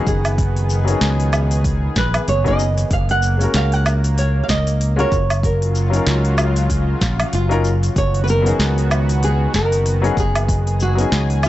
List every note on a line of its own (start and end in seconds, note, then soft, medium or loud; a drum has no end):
0.00 2.87 D#3 medium
0.00 2.87 B3 medium
0.00 0.36 F#4 medium
0.07 0.94 F#1 loud
0.07 0.98 G#4 medium
0.07 kick loud
0.07 cabasa medium
0.25 open hi-hat soft
0.25 cabasa soft
0.25 low woodblock medium
0.38 2.89 G#4 medium
0.38 kick loud
0.38 open hi-hat medium
0.38 cabasa soft
0.56 open hi-hat soft
0.70 cabasa medium
0.84 1.91 F#3 medium
0.84 1.92 B3 medium
0.84 1.93 C#4 medium
0.84 open hi-hat soft
0.84 cabasa soft
0.89 1.94 D#4 medium
0.89 1.94 G#4 medium
1.01 1.88 C#2 loud
1.01 snare medium
1.01 open hi-hat medium
1.01 cabasa soft
1.20 open hi-hat soft
1.33 cabasa medium
1.33 low woodblock medium
1.51 open hi-hat soft
1.51 cabasa soft
1.64 kick loud
1.64 open hi-hat medium
1.64 cabasa soft
1.96 2.18 A#1 medium
1.96 2.29 B4 medium
1.96 kick loud
1.96 snare medium
1.96 cabasa medium
2.14 open hi-hat soft
2.14 cabasa soft
2.14 low woodblock medium
2.28 2.83 F#1 loud
2.28 2.47 C#5 medium
2.28 open hi-hat soft
2.28 cabasa soft
2.44 2.60 F#3 medium
2.44 2.60 B3 medium
2.44 2.61 C#4 medium
2.44 2.61 D#4 medium
2.44 2.62 G#4 loud
2.44 2.93 D#5 loud
2.44 kick medium
2.44 open hi-hat soft
2.59 cabasa medium
2.78 open hi-hat soft
2.78 cabasa soft
2.90 3.46 F#1 loud
2.90 5.41 A#3 medium
2.90 3.10 F5 loud
2.90 kick loud
2.90 open hi-hat medium
2.90 cabasa soft
3.09 3.56 F#5 loud
3.09 open hi-hat soft
3.23 cabasa medium
3.37 4.44 G#3 medium
3.37 4.45 C#4 medium
3.37 open hi-hat soft
3.37 cabasa soft
3.42 4.46 F#4 medium
3.42 4.47 A#4 medium
3.54 4.41 C#2 loud
3.54 3.73 F5 loud
3.54 snare medium
3.54 open hi-hat medium
3.54 cabasa soft
3.72 4.19 F#5 loud
3.72 open hi-hat soft
3.86 cabasa medium
3.86 low woodblock medium
4.04 open hi-hat soft
4.04 cabasa soft
4.18 4.44 C#5 medium
4.18 open hi-hat medium
4.18 cabasa soft
4.44 4.49 F5 medium
4.49 5.04 C#2 medium
4.49 5.00 D#5 loud
4.49 kick medium
4.49 snare medium
4.49 cabasa medium
4.67 open hi-hat soft
4.67 cabasa soft
4.81 open hi-hat medium
4.81 cabasa soft
4.96 5.12 G#3 medium
4.96 5.13 C#4 medium
4.96 5.13 F4 medium
4.96 5.14 F#4 medium
4.96 5.14 A#4 loud
4.96 5.46 C#5 medium
4.96 open hi-hat soft
5.12 5.99 F#1 loud
5.12 kick loud
5.12 cabasa medium
5.30 open hi-hat soft
5.30 cabasa soft
5.30 low woodblock medium
5.43 7.93 C#3 medium
5.43 7.93 F#3 medium
5.43 7.94 F4 loud
5.43 6.03 A#4 medium
5.43 kick loud
5.43 open hi-hat medium
5.43 cabasa soft
5.62 open hi-hat soft
5.75 cabasa medium
5.90 6.96 F#3 medium
5.90 6.97 C#4 medium
5.90 6.98 D#4 medium
5.90 open hi-hat soft
5.90 cabasa soft
5.94 6.99 F4 medium
5.94 7.00 A#4 medium
6.07 6.94 C#2 loud
6.07 snare medium
6.07 open hi-hat medium
6.07 cabasa soft
6.25 open hi-hat soft
6.38 cabasa medium
6.38 low woodblock medium
6.56 open hi-hat soft
6.56 cabasa soft
6.70 kick medium
6.70 open hi-hat medium
6.70 cabasa soft
7.01 7.23 A#1 loud
7.01 kick medium
7.01 snare medium
7.01 cabasa medium
7.20 open hi-hat soft
7.20 cabasa soft
7.20 low woodblock medium
7.33 7.88 F#1 loud
7.33 7.99 F4 medium
7.33 open hi-hat medium
7.33 cabasa soft
7.49 7.65 F#3 medium
7.49 7.66 C#4 medium
7.49 7.66 D#4 medium
7.49 7.66 F4 medium
7.49 7.67 A#4 loud
7.49 open hi-hat soft
7.65 cabasa medium
7.83 open hi-hat soft
7.83 cabasa soft
7.96 8.51 F#1 loud
7.96 11.49 D#3 medium
7.96 11.49 B3 medium
7.96 10.47 F#4 loud
7.96 8.23 C#5 loud
7.96 kick loud
7.96 open hi-hat medium
7.96 cabasa soft
8.14 open hi-hat soft
8.24 8.29 B4 medium
8.28 9.20 A#4 loud
8.28 cabasa medium
8.42 9.49 F#3 medium
8.42 9.50 B3 medium
8.42 9.50 C#4 medium
8.46 9.51 D#4 medium
8.46 9.52 G#4 medium
8.46 open hi-hat soft
8.46 cabasa soft
8.59 9.46 C#2 loud
8.59 snare medium
8.59 open hi-hat medium
8.59 cabasa soft
8.78 open hi-hat soft
8.91 cabasa medium
8.91 low woodblock medium
9.09 open hi-hat soft
9.09 cabasa soft
9.23 9.55 G#4 loud
9.23 open hi-hat medium
9.23 cabasa soft
9.54 10.09 F#1 medium
9.54 10.19 A#4 loud
9.54 kick medium
9.54 snare medium
9.54 cabasa medium
9.72 open hi-hat soft
9.72 cabasa soft
9.86 open hi-hat medium
9.86 cabasa soft
10.02 10.18 F#3 medium
10.02 10.18 B3 medium
10.02 10.19 C#4 medium
10.02 10.19 D#4 medium
10.02 10.19 G#4 loud
10.02 open hi-hat soft
10.17 11.04 F#1 loud
10.17 10.82 G#4 loud
10.17 kick loud
10.17 cabasa medium
10.35 open hi-hat soft
10.35 cabasa soft
10.35 low woodblock medium
10.49 11.49 G#4 medium
10.49 kick loud
10.49 open hi-hat medium
10.49 cabasa soft
10.67 open hi-hat soft
10.80 11.46 F#4 medium
10.80 cabasa medium
10.95 11.49 F#3 medium
10.95 11.49 B3 medium
10.95 11.49 C#4 medium
10.95 open hi-hat soft
10.95 cabasa soft
11.00 11.49 D#4 medium
11.00 11.49 G#4 medium
11.12 11.49 C#2 loud
11.12 snare medium
11.12 open hi-hat medium
11.12 cabasa soft
11.30 open hi-hat soft
11.43 cabasa medium
11.43 low woodblock medium